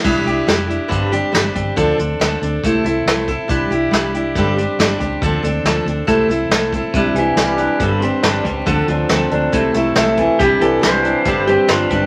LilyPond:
<<
  \new Staff \with { instrumentName = "Electric slide guitar" } { \time 4/4 \key c \mixolydian \tempo 4 = 139 r1 | r1 | r1 | r1 |
r1 | r1 | g'8 a'8 c''4. g'8 f'8 d'8 | }
  \new Staff \with { instrumentName = "Steel-string acoustic guitar" } { \time 4/4 \key c \mixolydian <c g d' e' g'>8 <d' e' g'>8 <g d' e' g'>8 <d' e' g'>8 <g, d g c' d' g'>8 <g c' d' g'>8 <g c' d' g'>8 <g c' d' g'>8 | <d f c' d' a'>8 <c' d' a'>8 <f c' d' a'>8 <c' d' a'>8 <c a c' e' a'>8 <c' e' a'>8 <a c' e' a'>8 <c' e' a'>8 | <c g d' e' g'>8 <d' e' g'>8 <g d' e' g'>8 <d' e' g'>8 <g, d g c' d' g'>8 <g c' d' g'>8 <g c' d' g'>8 <g c' d' g'>8 | <d f c' d' a'>8 <c' d' a'>8 <f c' d' a'>8 <c' d' a'>8 <c a c' e' a'>8 <c' e' a'>8 <a c' e' a'>8 <c' e' a'>8 |
<c g d' e' g'>8 <d' e' g'>8 <g d' e' g'>8 <d' e' g'>8 <g, d g c' d' g'>8 <g c' d' g'>8 <g c' d' g'>8 <g c' d' g'>8 | <d f c' d' a'>8 <c' d' a'>8 <f c' d' a'>8 <c' d' a'>8 <c a c' e' a'>8 <c' e' a'>8 <a c' e' a'>8 <c' e' a'>8 | <c g d' e' g'>8 <d' e' g'>8 <g d' e' g'>8 <d' e' g'>8 <g, d g c' d' g'>8 <g c' d' g'>8 <g c' d' g'>8 <g c' d' g'>8 | }
  \new Staff \with { instrumentName = "Clean electric guitar" } { \clef bass \time 4/4 \key c \mixolydian r1 | r1 | r1 | r1 |
c8 e8 g8 d'8 g,8 c'8 d'8 g8 | d8 f8 c'8 d'8 c8 a8 e'8 e8 | c8 e8 g8 d'8 g,8 c'8 d'8 g8 | }
  \new Staff \with { instrumentName = "Fingered electric bass" } { \clef bass \time 4/4 \key c \mixolydian c,8 c,8 f,,4 g,,4 g,,8 g,,8 | d,8 d,8 d,8 d,8 c,8 c,8 c,4 | c,8 c,8 c,4 g,,4 g,,8 cis,8 | d,8 d,8 d,8 d,8 c,8 c,8 c,4 |
c,8 c,8 c,4 g,,4 g,,8 cis,8 | d,8 d,8 d,8 d,8 c,8 c,8 c,4 | c,8 c,8 c,4 g,,4 g,,8 g,,8 | }
  \new DrumStaff \with { instrumentName = "Drums" } \drummode { \time 4/4 <cymc bd>8 hh8 <hh sn>8 hh8 <hh bd>8 hh8 <hh sn>8 <hh bd>8 | <hh bd>8 hh8 <hh sn>8 hh8 <hh bd>8 hh8 <hh sn>8 <hh bd>8 | <hh bd>8 hh8 <hh sn>8 hh8 <hh bd>8 hh8 <hh sn>8 <hh bd>8 | <hh bd>8 hh8 <hh sn>8 hh8 <hh bd>8 hh8 <hh sn>8 <hh bd>8 |
<hh bd>8 hh8 <hh sn>8 hh8 <hh bd>8 hh8 <hh sn>8 <hh bd>8 | <hh bd>8 hh8 <hh sn>8 hh8 <hh bd>8 hh8 <hh sn>8 <hh bd>8 | <hh bd>8 hh8 <hh sn>8 hh8 <hh bd>8 hh8 <hh sn>8 <hh bd>8 | }
>>